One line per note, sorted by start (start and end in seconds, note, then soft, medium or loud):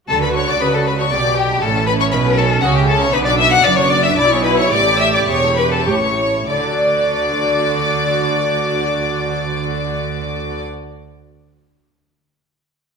0.08 0.57 D2 medium
0.08 0.57 D3 medium
0.08 1.07 F#4 medium
0.08 0.20 A4 medium
0.08 0.22 A4 medium
0.08 0.21 A5 loud
0.21 0.43 A4 medium
0.21 0.37 B4 medium
0.21 0.29 B4 medium
0.21 0.35 B5 medium
0.34 0.56 D4 medium
0.34 0.47 C#5 medium
0.34 0.48 C#5 medium
0.34 0.47 C#6 loud
0.48 0.69 F#4 medium
0.48 0.63 D5 medium
0.48 0.61 D5 medium
0.48 0.61 D6 loud
0.60 1.12 C#2 medium
0.60 1.08 C#3 medium
0.60 1.12 C#3 medium
0.60 0.81 D4 medium
0.60 0.66 B4 medium
0.60 0.76 B4 loud
0.60 0.73 B5 medium
0.73 0.86 A4 medium
0.73 0.94 A4 medium
0.73 0.87 A4 medium
0.73 0.86 A5 medium
0.85 1.07 D4 medium
0.85 1.00 B4 medium
0.85 0.91 B4 medium
0.85 0.98 B5 loud
0.99 1.11 A4 medium
0.99 1.04 C#5 medium
0.99 1.10 C#5 medium
0.99 1.11 C#6 loud
1.10 1.62 B1 medium
1.10 1.58 B2 medium
1.10 1.62 B2 medium
1.10 1.62 G4 medium
1.10 1.36 D5 medium
1.10 1.36 D6 loud
1.25 1.45 G4 medium
1.36 1.58 B3 medium
1.36 1.61 G4 medium
1.36 1.63 G4 medium
1.36 1.62 G5 loud
1.50 1.62 D4 medium
1.62 2.12 A1 medium
1.62 2.08 A2 medium
1.62 2.12 A2 medium
1.62 3.11 C#4 medium
1.62 1.86 A4 medium
1.62 1.88 A4 medium
1.62 1.87 A5 loud
1.75 1.95 A4 medium
1.87 2.08 C#4 medium
1.87 1.92 B4 medium
1.87 2.00 B4 medium
1.87 1.92 B5 loud
1.99 2.21 E4 medium
1.99 2.14 C#5 medium
1.99 2.05 C#5 medium
1.99 2.05 C#6 loud
2.12 2.63 B1 medium
2.12 2.63 B2 medium
2.12 2.60 B2 medium
2.12 2.33 C#4 medium
2.12 2.39 B4 loud
2.12 2.38 B4 medium
2.12 2.20 B5 loud
2.26 2.46 A4 medium
2.37 2.58 C#4 medium
2.37 2.66 A4 loud
2.37 2.63 A4 medium
2.37 2.45 A5 loud
2.51 2.71 A4 medium
2.62 3.13 C#2 medium
2.62 3.10 C#3 medium
2.62 3.13 C#3 medium
2.62 2.83 C#4 medium
2.62 2.76 F#4 loud
2.62 2.67 F#5 loud
2.76 2.97 E4 medium
2.76 2.89 G4 medium
2.76 2.88 G4 medium
2.76 2.88 G5 medium
2.87 3.01 A4 loud
2.87 2.94 A4 medium
2.87 3.09 C#5 medium
2.87 3.01 A5 loud
3.00 3.14 E4 medium
3.00 3.13 C#5 loud
3.00 3.16 C#5 loud
3.00 3.14 C#6 loud
3.12 3.64 B1 loud
3.12 3.64 B2 loud
3.12 3.62 B2 medium
3.12 3.64 D4 medium
3.12 3.18 B4 loud
3.12 3.24 B4 loud
3.12 3.19 B5 loud
3.25 3.48 F#4 medium
3.25 3.30 D5 medium
3.25 3.32 D5 loud
3.25 3.39 D6 loud
3.38 3.61 B3 medium
3.38 3.52 E5 loud
3.38 3.51 E5 loud
3.38 3.52 E6 loud
3.52 3.74 D4 medium
3.52 3.65 F#5 loud
3.52 3.65 F#6 loud
3.64 4.17 F#1 loud
3.64 4.17 F#2 medium
3.64 4.15 F#2 medium
3.64 3.87 B3 medium
3.64 4.17 D4 medium
3.64 3.78 D5 loud
3.64 3.78 D6 loud
3.76 4.00 F#4 medium
3.76 3.91 C#5 loud
3.76 3.91 C#6 loud
3.90 4.13 B3 medium
3.90 4.05 D5 loud
3.90 4.04 D5 loud
3.90 4.04 D6 loud
4.03 4.18 F#4 medium
4.03 4.19 E5 medium
4.03 4.19 E5 loud
4.03 4.18 E6 loud
4.16 4.71 B1 medium
4.16 4.68 B2 medium
4.16 4.72 B2 loud
4.16 4.44 E4 medium
4.16 4.32 D5 loud
4.16 4.31 D5 loud
4.16 4.30 D6 loud
4.31 4.54 G#4 medium
4.31 4.44 C#5 loud
4.31 4.45 C#5 loud
4.31 4.45 C#6 loud
4.44 4.67 B3 medium
4.44 4.72 E4 medium
4.44 4.57 B4 loud
4.44 4.58 B4 loud
4.44 4.50 B5 loud
4.57 4.73 E4 medium
4.57 4.72 C#5 medium
4.57 4.72 C#5 loud
4.57 4.72 C#6 loud
4.71 5.27 A1 loud
4.71 5.27 A2 loud
4.71 5.25 A2 medium
4.71 5.85 G4 medium
4.71 5.01 D5 loud
4.71 4.99 D6 loud
4.87 5.09 A4 medium
4.99 5.13 E5 loud
4.99 5.07 E5 loud
4.99 5.14 E6 loud
5.13 5.37 E4 medium
5.13 5.28 D5 loud
5.13 5.29 D5 medium
5.13 5.20 D6 loud
5.27 5.86 E1 medium
5.27 5.86 E2 medium
5.27 5.84 E2 medium
5.27 5.58 C#5 loud
5.27 5.56 C#6 loud
5.44 5.67 A4 medium
5.56 5.73 B4 loud
5.56 5.73 B4 medium
5.56 5.71 B5 loud
5.71 5.86 A4 medium
5.71 5.88 A4 medium
5.71 5.87 A5 loud
5.86 6.49 A1 medium
5.86 6.49 A2 medium
5.86 6.45 A2 medium
5.86 5.95 G4 medium
5.86 6.48 C#5 medium
5.86 6.49 C#5 medium
5.86 6.48 C#6 loud
6.03 6.28 A4 medium
6.34 6.49 E4 medium
6.48 10.61 D2 medium
6.48 10.62 D3 medium
6.48 10.61 F#4 medium
6.48 10.62 D5 medium
6.48 10.61 D6 loud
6.57 10.69 F#3 medium
6.63 10.76 D4 medium
6.70 10.83 A4 medium
6.78 10.90 D5 medium